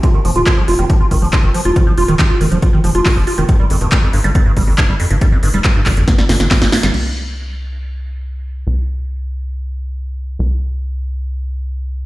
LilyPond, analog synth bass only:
\new Staff \with { instrumentName = "Analog synth bass" } { \clef bass \time 4/4 \key f \dorian \tempo 4 = 139 r8 f,,16 ees,,16 r8 f,,16 f,,16 r8 f,,16 f,,16 r16 f,,16 r16 f,,16 | r8 f,,16 ees,,16 r8 f,,16 f,,16 r8 f,,16 f,,16 r16 f,,16 r16 f,,16 | r8 g,,16 f,,16 r8 g,,16 g,,16 r8 g,,16 g,,16 r16 g,,16 r16 g,,16 | r8 g,,16 f,,16 r8 g,,16 g,,16 r8 g,,16 g,,16 r16 g,,16 r16 g,,16 |
c,1 | c,1 | c,1 | }